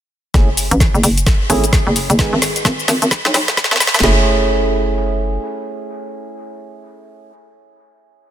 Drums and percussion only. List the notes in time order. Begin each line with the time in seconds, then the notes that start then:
0.34 kick, snare, closed hi-hat, shaker
0.57 open hi-hat, shaker
0.71 closed hi-hat, shaker
0.80 kick, snare, closed hi-hat, shaker
0.95 shaker
1.03 open hi-hat, shaker
1.18 closed hi-hat, shaker
1.27 kick, snare, closed hi-hat, shaker
1.50 open hi-hat, shaker
1.64 closed hi-hat, shaker
1.73 kick, snare, closed hi-hat, shaker
1.96 open hi-hat, shaker
2.10 closed hi-hat, shaker
2.19 kick, snare, closed hi-hat, shaker
2.42 snare, open hi-hat, shaker
2.56 closed hi-hat, shaker
2.65 kick, snare, closed hi-hat, shaker
2.79 shaker
2.88 snare, open hi-hat, shaker
3.02 closed hi-hat, shaker
3.11 kick, snare, closed hi-hat, shaker
3.25 snare
3.34 snare, open hi-hat, shaker
3.48 snare, closed hi-hat, shaker
3.57 kick, snare, closed hi-hat, shaker
3.64 snare
3.71 snare
3.76 snare
3.80 snare, open hi-hat, shaker
3.87 snare
3.94 snare, closed hi-hat, shaker
3.99 snare
4.03 snare